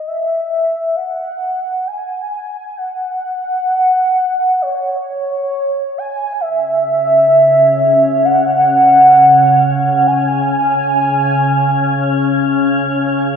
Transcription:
0.07 0.97 E5 loud
0.96 1.89 F#5 loud
1.87 2.79 G#5 loud
2.77 4.63 F#5 loud
4.62 5.99 C#5 loud
5.98 6.42 G#5 loud
6.41 13.36 C#3 medium
6.41 13.36 C#4 medium
6.41 8.26 E5 loud
8.25 10.07 F#5 loud
10.07 12.76 G#5 loud

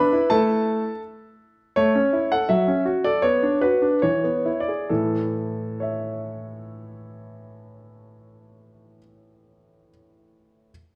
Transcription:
0.00 0.14 D4 soft
0.00 0.29 B4 medium
0.00 0.31 B5 medium
0.13 0.29 E4 soft
0.30 0.82 A3 soft
0.30 0.89 E4 soft
0.30 1.00 A4 medium
0.30 0.99 A5 medium
1.76 1.95 A3 medium
1.76 2.31 C#5 medium
1.95 2.14 C#4 soft
2.13 2.32 E4 soft
2.32 2.50 A4 soft
2.32 2.50 F#5 medium
2.49 2.67 F#3 soft
2.49 2.82 E5 medium
2.68 2.87 C#4 soft
2.85 3.06 F#4 soft
3.04 3.24 A4 soft
3.04 3.24 D5 medium
3.22 3.42 B3 soft
3.22 3.58 C#5 medium
3.43 3.64 D4 soft
3.61 3.84 F#4 soft
3.61 3.99 B4 medium
3.82 4.03 D4 soft
4.02 4.24 E3 soft
4.02 4.60 C#5 medium
4.24 4.47 B3 soft
4.45 4.69 E4 soft
4.60 4.90 D5 soft
4.68 4.91 G#4 soft
4.89 8.99 A2 soft
4.89 8.99 E3 soft
4.89 8.98 A4 soft
5.80 9.89 C#5 soft
5.80 9.91 E5 soft

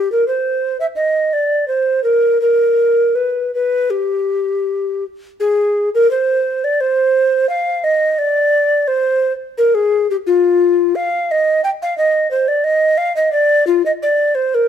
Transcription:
0.00 0.11 G4 medium
0.12 0.27 A#4 medium
0.28 0.79 C5 medium
0.80 0.86 E5 medium
0.96 1.35 D#5 medium
1.33 1.67 D5 medium
1.68 2.03 C5 medium
2.04 2.41 A#4 medium
2.41 3.17 A#4 medium
3.15 3.54 B4 medium
3.55 3.92 B4 medium
3.90 5.04 G4 medium
5.40 5.90 G#4 medium
5.95 6.10 A#4 medium
6.11 6.66 C5 medium
6.64 6.82 D5 medium
6.81 7.49 C5 medium
7.49 7.85 F5 medium
7.84 8.20 D#5 medium
8.19 8.89 D5 medium
8.88 9.33 C5 medium
9.58 9.76 A#4 medium
9.75 10.09 G#4 medium
10.11 10.17 G4 medium
10.27 10.97 F4 medium
10.96 11.33 F5 medium
11.31 11.63 D#5 medium
11.64 11.70 G5 medium
11.82 11.97 F5 medium
11.98 12.30 D#5 medium
12.31 12.50 C5 medium
12.48 12.66 D5 medium
12.64 12.99 D#5 medium
12.98 13.15 F5 loud
13.16 13.32 D#5 medium
13.32 13.66 D5 medium
13.67 13.85 F4 medium
13.86 13.92 D#5 medium
14.03 14.36 D5 medium
14.35 14.56 C5 medium
14.55 14.68 A#4 medium

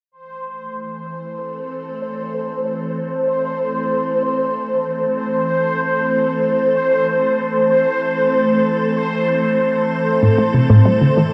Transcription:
0.12 11.34 E3 medium
0.12 11.34 C5 medium
0.20 11.34 A3 medium
0.84 11.34 C4 medium
0.84 11.34 A4 medium
10.22 10.37 A2 medium
10.38 10.45 A3 medium
10.54 10.69 C3 medium
10.70 10.81 A2 loud
10.86 10.97 G3 medium
11.01 11.13 D3 medium
11.17 11.32 E3 medium

